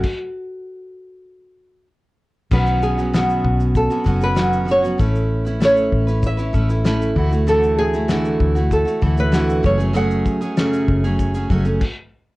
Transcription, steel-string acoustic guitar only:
\new Staff \with { instrumentName = "Steel-string acoustic guitar" } { \time 4/4 \key b \dorian \tempo 4 = 97 r1 | <b, dis fis b cis' fis'>8. <fis b cis' fis'>16 <b, dis fis b cis' fis'>4~ <b, dis fis b cis' fis'>16 <fis b cis' fis'>16 <fis b cis' fis'>8 <b, dis fis b cis' fis'>8 <fis b cis' fis'>16 <fis b cis' fis'>16 | <a cis' e' b'>8. <cis' e' b'>16 <a cis' e' b'>8. <cis' e' b'>8 <cis' e' b'>16 <a cis' e' b'>16 <cis' e' b'>16 <a cis' e' b'>8 <e a e' fis'>16 <a e' fis'>16 | <d e a e' fis'>8. <a e' fis'>16 <d e a e' fis'>8. <a e' fis'>8 <a e' fis'>16 <e a e' fis'>8 <d e a e' fis'>8 <fis a cis' gis'>16 <fis a cis' gis'>16 |
<fis, cis fis a cis' gis'>8. <fis a cis' gis'>16 <fis, cis fis a cis' gis'>8. <fis a cis' gis'>8 <fis a cis' gis'>16 <fis a cis' gis'>16 <fis a cis' gis'>16 r4 | }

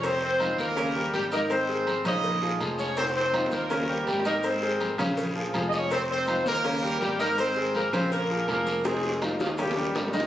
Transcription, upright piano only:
\new Staff \with { instrumentName = "Upright piano" } { \time 4/4 \key aes \major \tempo 4 = 163 <c c' c''>4 <ees ees' f'>4 <des des' des''>8 <g g' bes'>4 <ees ees' ees''>8~ | <ees ees' ees''>8 <aes aes' bes'>4 <des des' des''>4 <f f' aes'>8 <f f' aes'>4 | <c c' c''>4 <ees ees' f'>4 <des des' des''>8 <g g' bes'>4 <ees ees' ees''>8~ | <ees ees' ees''>8 <aes aes' bes'>4 <des des' des''>4 <f f' aes'>8 <f f' aes'>4 |
<c c' c''>4 <ees ees' f'>4 <des des' des''>8 <g g' bes'>4 <ees ees' ees''>8~ | <ees ees' ees''>8 <aes aes' bes'>4 <des des' des''>4 <f f' aes'>8 <f f' aes'>4 | <c c' c''>4 <ees ees' f'>4 <des des' des''>8 <g g' bes'>4 <ees ees' ees''>8 | }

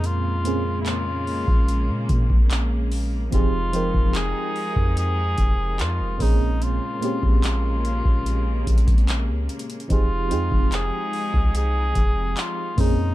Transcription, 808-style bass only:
\new Staff \with { instrumentName = "808-style bass" } { \clef bass \time 4/4 \key f \minor \tempo 4 = 73 f,4.~ f,16 bes,,8 bes,16 bes,16 bes,,4~ bes,,16 | f,,8. f,,8 r8 f,8. f,,8 f,16 f,,16 bes,,8~ | bes,,16 r8 bes,,4 bes,,8. bes,,8. des,16 r8 | f,,8 f,16 f,,8 r8 c,8. f,,8 r8 f,8 | }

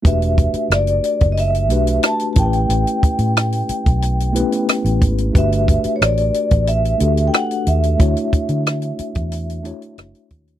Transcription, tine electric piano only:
\new Staff \with { instrumentName = "Tine electric piano" } { \time 4/4 \key e \dorian \tempo 4 = 90 <a d' fis' g' b'>4. r4 <a d' fis' g' b'>4 <a cis' e' g' ais' b'>8~ | <a cis' e' g' ais' b'>4 r4. <a b cis' e' g' b'>4 r8 | <a d' fis' g' b'>4. r4 <a d' fis' g' a'>4 r8 | <a d' e' fis' cis''>4. r4 <a d' e' fis' cis''>4 r8 | }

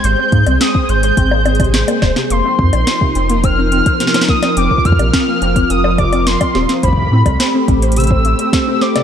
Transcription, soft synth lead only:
\new Staff \with { instrumentName = "Soft synth lead" } { \time 4/4 \key f \dorian \tempo 4 = 106 g'''4 ees'''8 g'''2 r8 | c'''2 f'''4. ees'''8 | d'''8 f'''4. ees'''8 d'''8 c'''8. r16 | b''4. r8 e'''4~ e'''16. e'''32 d'''8 | }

